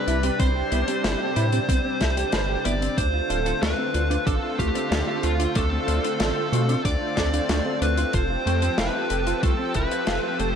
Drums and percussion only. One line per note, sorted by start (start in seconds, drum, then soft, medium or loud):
0.08 closed hi-hat medium
0.23 closed hi-hat medium
0.40 kick loud
0.40 closed hi-hat medium
0.72 closed hi-hat medium
0.88 closed hi-hat medium
1.04 snare loud
1.04 closed hi-hat loud
1.36 closed hi-hat medium
1.52 closed hi-hat medium
1.69 kick loud
1.69 closed hi-hat loud
2.01 kick medium
2.01 snare medium
2.01 closed hi-hat medium
2.17 closed hi-hat medium
2.32 snare loud
2.32 closed hi-hat loud
2.65 closed hi-hat medium
2.82 closed hi-hat medium
2.98 kick loud
2.98 closed hi-hat medium
3.30 closed hi-hat medium
3.46 closed hi-hat medium
3.63 snare loud
3.63 closed hi-hat medium
3.94 closed hi-hat medium
4.11 closed hi-hat medium
4.27 kick loud
4.27 closed hi-hat medium
4.59 kick medium
4.59 closed hi-hat medium
4.75 closed hi-hat medium
4.92 snare loud
4.92 closed hi-hat loud
5.23 closed hi-hat medium
5.40 closed hi-hat medium
5.55 kick loud
5.55 closed hi-hat loud
5.88 closed hi-hat medium
6.04 closed hi-hat medium
6.20 snare loud
6.20 closed hi-hat medium
6.53 closed hi-hat medium
6.69 closed hi-hat medium
6.85 kick loud
6.85 closed hi-hat medium
7.17 kick medium
7.17 snare medium
7.17 closed hi-hat medium
7.34 closed hi-hat medium
7.49 snare loud
7.49 closed hi-hat loud
7.82 closed hi-hat medium
7.98 closed hi-hat medium
8.13 kick loud
8.13 closed hi-hat medium
8.47 closed hi-hat medium
8.62 closed hi-hat medium
8.78 snare loud
8.78 closed hi-hat medium
9.10 closed hi-hat medium
9.27 closed hi-hat medium
9.43 kick loud
9.43 closed hi-hat medium
9.74 kick medium
9.74 closed hi-hat medium
9.91 closed hi-hat medium
10.07 snare loud
10.07 closed hi-hat loud
10.40 closed hi-hat medium